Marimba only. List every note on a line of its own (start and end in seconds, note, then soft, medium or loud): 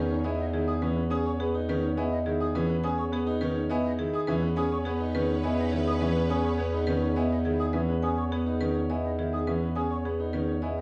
0.00 0.14 B4 medium
0.24 0.43 D#5 medium
0.53 0.72 G#4 medium
0.82 1.01 B4 medium
1.12 1.30 G#5 medium
1.40 1.58 G#4 medium
1.69 1.88 B4 loud
1.98 2.16 D#5 medium
2.26 2.45 G#4 medium
2.56 2.74 B4 medium
2.84 3.03 G#5 medium
3.13 3.32 G#4 medium
3.41 3.60 B4 loud
3.70 3.89 D#5 medium
3.99 4.18 G#4 medium
4.27 4.47 B4 loud
4.56 4.75 G#5 medium
4.85 5.04 G#4 medium
5.15 5.33 B4 loud
5.44 5.62 D#5 medium
5.72 5.91 G#4 medium
6.01 6.20 B4 medium
6.30 6.49 G#5 medium
6.58 6.77 G#4 medium
6.87 7.06 B4 loud
7.16 7.35 D#5 medium
7.45 7.64 G#4 medium
7.73 7.93 B4 medium
8.02 8.22 G#5 medium
8.32 8.51 G#4 medium
8.61 8.80 B4 medium
8.90 9.08 D#5 medium
9.19 9.37 G#4 medium
9.47 9.66 B4 medium
9.76 9.95 G#5 medium
10.05 10.24 G#4 medium
10.33 10.52 B4 medium
10.62 10.81 D#5 medium